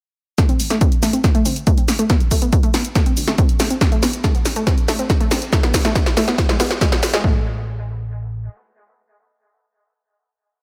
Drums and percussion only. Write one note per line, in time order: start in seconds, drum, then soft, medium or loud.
0.38 kick loud
0.38 snare soft
0.38 closed hi-hat medium
0.38 shaker soft
0.49 closed hi-hat soft
0.49 shaker soft
0.60 open hi-hat loud
0.60 shaker medium
0.70 snare soft
0.70 closed hi-hat medium
0.70 shaker soft
0.81 kick loud
0.81 closed hi-hat medium
0.81 shaker soft
0.92 closed hi-hat medium
0.92 shaker soft
1.03 snare soft
1.03 open hi-hat medium
1.03 shaker medium
1.13 closed hi-hat medium
1.13 shaker soft
1.24 kick loud
1.24 snare medium
1.24 closed hi-hat medium
1.24 shaker soft
1.35 closed hi-hat medium
1.35 shaker soft
1.45 open hi-hat loud
1.45 shaker medium
1.56 closed hi-hat soft
1.56 shaker soft
1.67 kick loud
1.67 closed hi-hat medium
1.67 shaker soft
1.78 closed hi-hat medium
1.78 shaker soft
1.88 snare medium
1.88 open hi-hat medium
1.88 shaker medium
1.99 closed hi-hat medium
1.99 shaker soft
2.10 kick loud
2.10 snare medium
2.10 closed hi-hat medium
2.10 shaker soft
2.20 closed hi-hat soft
2.20 shaker soft
2.31 kick medium
2.31 open hi-hat loud
2.31 shaker medium
2.42 closed hi-hat medium
2.42 shaker soft
2.53 kick loud
2.53 closed hi-hat medium
2.53 shaker soft
2.63 closed hi-hat soft
2.63 shaker soft
2.74 snare medium
2.74 open hi-hat medium
2.74 shaker medium
2.85 closed hi-hat medium
2.85 shaker soft
2.95 kick loud
2.95 snare medium
2.95 closed hi-hat medium
2.95 shaker soft
3.06 closed hi-hat medium
3.06 shaker soft
3.17 open hi-hat loud
3.17 shaker medium
3.28 snare medium
3.28 closed hi-hat medium
3.28 shaker soft
3.38 kick loud
3.38 closed hi-hat medium
3.38 shaker soft
3.49 closed hi-hat medium
3.49 shaker soft
3.60 snare medium
3.60 open hi-hat medium
3.60 shaker medium
3.70 closed hi-hat medium
3.70 shaker soft
3.81 kick loud
3.81 snare medium
3.81 closed hi-hat medium
3.81 shaker soft
3.92 closed hi-hat soft
3.92 shaker soft
4.03 snare medium
4.03 open hi-hat loud
4.03 shaker medium
4.13 closed hi-hat medium
4.13 shaker soft
4.24 kick loud
4.24 snare medium
4.24 closed hi-hat medium
4.24 shaker soft
4.35 closed hi-hat soft
4.35 shaker soft
4.45 snare medium
4.45 open hi-hat loud
4.45 shaker medium
4.56 closed hi-hat soft
4.56 shaker soft
4.67 kick loud
4.67 snare medium
4.67 closed hi-hat medium
4.67 shaker soft
4.78 closed hi-hat medium
4.78 shaker soft
4.88 snare medium
4.88 open hi-hat loud
4.88 shaker medium
4.99 closed hi-hat medium
4.99 shaker soft
5.10 kick loud
5.10 snare medium
5.10 closed hi-hat medium
5.10 shaker soft
5.21 closed hi-hat medium
5.21 shaker soft
5.31 snare medium
5.31 open hi-hat loud
5.31 shaker medium
5.42 closed hi-hat medium
5.42 shaker soft
5.53 kick loud
5.53 snare medium
5.53 closed hi-hat medium
5.53 shaker soft
5.63 snare medium
5.63 closed hi-hat soft
5.63 shaker soft
5.74 kick medium
5.74 snare loud
5.74 open hi-hat loud
5.74 shaker medium
5.85 snare medium
5.85 closed hi-hat medium
5.85 shaker soft
5.95 kick loud
5.95 snare medium
5.95 closed hi-hat medium
5.95 shaker soft
6.06 snare medium
6.06 closed hi-hat soft
6.06 shaker soft
6.17 snare medium
6.17 open hi-hat medium
6.17 shaker medium
6.28 snare medium
6.28 closed hi-hat soft
6.28 shaker soft
6.38 kick loud
6.38 snare loud
6.38 closed hi-hat medium
6.38 shaker soft
6.49 snare medium
6.49 closed hi-hat medium
6.49 shaker soft
6.60 snare loud
6.60 open hi-hat loud
6.60 shaker medium
6.71 snare medium
6.71 closed hi-hat soft
6.71 shaker soft
6.81 kick loud
6.81 snare loud
6.81 closed hi-hat medium
6.81 shaker soft
6.92 snare loud
6.92 closed hi-hat medium
6.92 shaker soft
7.03 snare loud
7.03 open hi-hat loud
7.03 shaker medium
7.14 snare loud
7.14 closed hi-hat medium
7.14 shaker soft
7.24 kick loud